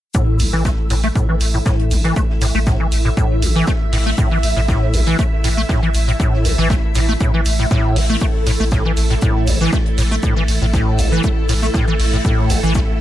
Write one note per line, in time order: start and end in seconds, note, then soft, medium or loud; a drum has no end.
0.15 0.41 A2 medium
0.15 13.01 A3 medium
0.15 13.01 E4 medium
0.15 8.20 E5 medium
0.15 kick loud
0.15 shaker medium
0.39 0.50 A1 loud
0.39 0.51 A1 medium
0.39 open hi-hat medium
0.39 shaker medium
0.53 0.73 A1 loud
0.53 0.63 E3 loud
0.65 0.70 A3 medium
0.65 kick loud
0.65 snare loud
0.65 shaker medium
0.90 1.11 A1 medium
0.90 0.95 A2 medium
0.90 open hi-hat medium
0.90 shaker medium
1.03 1.08 A3 loud
1.03 closed hi-hat soft
1.16 1.27 A2 medium
1.16 kick loud
1.16 shaker medium
1.29 1.35 E3 medium
1.41 1.61 A1 medium
1.41 open hi-hat loud
1.41 shaker medium
1.54 1.58 A2 medium
1.66 1.93 A2 medium
1.66 kick loud
1.66 snare loud
1.66 shaker medium
1.79 closed hi-hat soft
1.91 2.11 A1 medium
1.91 2.02 A1 medium
1.91 open hi-hat medium
1.91 shaker medium
2.04 2.14 E3 loud
2.04 closed hi-hat soft
2.16 2.21 A3 medium
2.16 kick loud
2.16 shaker medium
2.30 snare soft
2.41 2.52 A1 loud
2.41 2.46 A2 medium
2.41 snare soft
2.41 open hi-hat loud
2.41 shaker medium
2.55 2.75 A1 loud
2.55 2.59 A3 loud
2.67 2.78 A2 medium
2.67 kick loud
2.67 snare loud
2.67 shaker medium
2.80 2.87 E3 medium
2.92 3.12 A1 medium
2.92 open hi-hat medium
2.92 shaker medium
3.05 3.09 A2 medium
3.17 3.44 A2 medium
3.17 kick loud
3.17 shaker medium
3.42 3.53 A1 medium
3.42 3.63 A1 medium
3.42 open hi-hat loud
3.42 shaker medium
3.56 3.66 E3 loud
3.67 3.72 A3 medium
3.67 kick loud
3.67 snare loud
3.67 shaker medium
3.93 4.13 A1 medium
3.93 3.97 A2 medium
3.93 open hi-hat medium
4.06 4.10 A3 medium
4.18 4.29 A2 medium
4.18 kick loud
4.18 shaker medium
4.31 4.38 E3 medium
4.43 4.54 A1 loud
4.43 open hi-hat loud
4.43 shaker medium
4.57 4.76 A1 loud
4.57 4.61 A2 medium
4.68 4.95 A2 medium
4.68 kick loud
4.68 snare loud
4.68 shaker medium
4.94 5.14 A1 medium
4.94 5.05 A1 medium
4.94 open hi-hat medium
4.94 shaker medium
5.06 5.17 E3 loud
5.06 closed hi-hat soft
5.19 5.23 A3 medium
5.19 kick loud
5.19 shaker medium
5.44 5.64 A1 medium
5.44 5.49 A2 medium
5.44 open hi-hat loud
5.44 shaker medium
5.57 5.61 A3 loud
5.69 5.80 A2 medium
5.69 kick loud
5.69 snare loud
5.69 shaker medium
5.83 5.89 E3 medium
5.83 closed hi-hat soft
5.94 6.15 A1 medium
5.94 open hi-hat medium
5.94 shaker medium
6.08 6.12 A2 medium
6.08 closed hi-hat soft
6.20 6.46 A2 medium
6.20 kick loud
6.20 shaker medium
6.34 snare soft
6.45 6.56 A1 medium
6.45 snare soft
6.45 open hi-hat loud
6.45 shaker medium
6.58 6.78 A1 loud
6.58 6.68 E3 loud
6.70 6.75 A3 medium
6.70 kick loud
6.70 snare loud
6.70 shaker medium
6.95 7.16 A1 medium
6.95 7.00 A2 medium
6.95 open hi-hat medium
6.95 shaker medium
7.09 7.13 A3 loud
7.21 7.32 A2 medium
7.21 kick loud
7.21 shaker medium
7.34 7.40 E3 medium
7.45 7.66 A1 medium
7.45 open hi-hat loud
7.45 shaker medium
7.59 7.66 A2 medium
7.71 7.98 A2 loud
7.71 kick loud
7.71 snare loud
7.71 shaker medium
7.96 8.17 A1 medium
7.96 8.01 A3 medium
7.96 open hi-hat medium
8.10 8.16 A3 loud
8.21 8.26 A3 medium
8.21 13.01 A4 medium
8.21 kick loud
8.21 shaker medium
8.46 8.57 A1 loud
8.46 8.51 A2 medium
8.46 open hi-hat loud
8.46 shaker medium
8.60 8.80 A1 loud
8.60 8.64 A3 loud
8.71 8.83 A2 medium
8.71 kick loud
8.71 snare loud
8.71 shaker medium
8.85 8.92 E3 medium
8.97 9.17 A1 medium
8.97 open hi-hat medium
8.97 shaker medium
9.10 9.14 A2 medium
9.10 closed hi-hat soft
9.22 9.49 A2 medium
9.22 kick loud
9.22 shaker medium
9.47 9.68 A1 medium
9.47 9.58 A1 medium
9.47 open hi-hat loud
9.47 shaker medium
9.61 9.71 E3 loud
9.73 9.77 A3 medium
9.73 kick loud
9.73 snare loud
9.73 shaker medium
9.86 closed hi-hat soft
9.98 10.18 A1 medium
9.98 10.02 A2 medium
9.98 open hi-hat medium
9.98 shaker medium
10.11 10.15 A3 loud
10.11 closed hi-hat soft
10.23 10.34 A2 medium
10.23 kick loud
10.23 shaker medium
10.36 10.43 E3 medium
10.36 snare soft
10.48 10.59 A1 loud
10.48 snare soft
10.48 open hi-hat medium
10.48 shaker medium
10.62 10.81 A1 loud
10.62 10.66 A2 medium
10.74 11.00 A2 medium
10.74 kick loud
10.74 snare loud
10.74 shaker medium
10.99 11.10 A1 medium
10.99 11.19 A1 medium
10.99 open hi-hat medium
10.99 shaker medium
11.12 11.22 E3 loud
11.24 11.28 A3 medium
11.24 kick loud
11.24 shaker medium
11.49 11.70 A1 loud
11.49 11.54 A2 medium
11.49 open hi-hat loud
11.49 shaker medium
11.62 11.66 A3 loud
11.74 11.85 A2 medium
11.74 kick loud
11.74 snare loud
11.74 shaker medium
11.88 11.94 E3 medium
11.99 12.20 A1 medium
11.99 open hi-hat medium
12.13 12.17 A2 medium
12.25 12.51 A2 medium
12.25 kick loud
12.25 shaker medium
12.50 12.61 A1 medium
12.50 open hi-hat loud
12.50 shaker medium
12.63 12.83 A1 loud
12.63 12.73 E3 loud
12.75 12.80 A3 medium
12.75 kick loud
12.75 snare loud
12.75 shaker medium